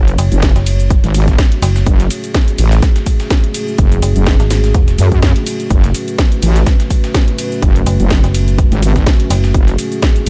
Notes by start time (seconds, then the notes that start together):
Already playing: F#1 A3 C#4 F#4 C#5
0.08 closed hi-hat, cabasa
0.18 F#1, closed hi-hat, open hi-hat, ride, cabasa
0.32 F#1, closed hi-hat, cabasa
0.42 kick, snare, closed hi-hat, cabasa
0.56 F#1, snare, closed hi-hat, cabasa
0.66 closed hi-hat, open hi-hat, ride, cabasa
0.80 closed hi-hat, cabasa
0.90 kick, closed hi-hat, cabasa
1.04 G#1, snare, closed hi-hat, cabasa
1.14 closed hi-hat, open hi-hat, ride, cabasa
1.28 kick, snare, closed hi-hat, cabasa
1.38 kick, snare, closed hi-hat, cabasa
1.52 closed hi-hat
1.62 F#1, snare, closed hi-hat, open hi-hat, ride, cabasa
1.76 snare, cabasa
1.86 F#1 G#4, kick, closed hi-hat, cabasa
2.00 snare, closed hi-hat, cabasa
2.11 closed hi-hat, open hi-hat, ride, cabasa
2.24 closed hi-hat, cabasa
2.34 kick, snare, closed hi-hat, cabasa
2.48 closed hi-hat, cabasa
2.58 A1, closed hi-hat, open hi-hat, ride, cabasa
2.72 snare, closed hi-hat, cabasa
2.82 kick, snare, closed hi-hat, cabasa
2.96 snare, closed hi-hat, cabasa
3.06 kick, closed hi-hat, open hi-hat, ride, cabasa
3.20 snare, closed hi-hat, cabasa
3.30 kick, snare, closed hi-hat, cabasa
3.44 closed hi-hat
3.54 closed hi-hat, open hi-hat, ride, cabasa
3.68 cabasa
3.78 F#1, kick, closed hi-hat, cabasa
3.92 closed hi-hat, cabasa
4.02 F#1, closed hi-hat, open hi-hat, ride, cabasa
4.16 F#1, closed hi-hat, cabasa
4.26 kick, snare, closed hi-hat, cabasa
4.40 G#1, snare, closed hi-hat, cabasa
4.51 snare, closed hi-hat, open hi-hat, ride, cabasa
4.64 snare, closed hi-hat, cabasa
4.74 E1, kick, closed hi-hat, cabasa
4.88 snare, closed hi-hat, cabasa
4.98 F#2, closed hi-hat, open hi-hat, ride, cabasa
5.12 kick, closed hi-hat, cabasa
5.22 kick, snare, closed hi-hat, cabasa
5.36 closed hi-hat
5.46 closed hi-hat, open hi-hat, ride, cabasa
5.60 closed hi-hat, cabasa
5.70 F#1 B4, kick, closed hi-hat, cabasa
5.84 snare, closed hi-hat, cabasa
5.94 closed hi-hat, open hi-hat, ride, cabasa
6.08 closed hi-hat, cabasa
6.18 kick, snare, closed hi-hat, cabasa
6.32 closed hi-hat, cabasa
6.42 A1, closed hi-hat, open hi-hat, ride, cabasa
6.56 snare, closed hi-hat, cabasa
6.66 kick, snare, closed hi-hat, cabasa
6.80 snare, closed hi-hat, cabasa
6.90 kick, closed hi-hat, open hi-hat, ride, cabasa
7.04 snare, closed hi-hat, cabasa
7.14 kick, snare, closed hi-hat, cabasa
7.28 closed hi-hat
7.39 closed hi-hat, open hi-hat, ride, cabasa
7.52 cabasa
7.62 F#1, kick, closed hi-hat, cabasa
7.76 closed hi-hat, cabasa
7.86 F#1, closed hi-hat, open hi-hat, ride, cabasa
8.00 F#1, closed hi-hat, cabasa
8.10 kick, snare, closed hi-hat, cabasa
8.24 F#1, snare, closed hi-hat, cabasa
8.35 closed hi-hat, open hi-hat, ride, cabasa
8.48 closed hi-hat, cabasa
8.58 kick, closed hi-hat, cabasa
8.72 G#1, snare, closed hi-hat, cabasa
8.82 closed hi-hat, open hi-hat, ride, cabasa
8.96 kick, snare, closed hi-hat, cabasa
9.06 kick, snare, closed hi-hat, cabasa
9.20 closed hi-hat
9.30 F#1, snare, closed hi-hat, open hi-hat, ride, cabasa
9.44 snare, cabasa
9.54 F#1 G#4, kick, closed hi-hat, cabasa
9.68 snare, closed hi-hat, cabasa
9.79 closed hi-hat, open hi-hat, ride, cabasa
9.92 closed hi-hat, cabasa
10.02 kick, snare, closed hi-hat, cabasa
10.16 closed hi-hat, cabasa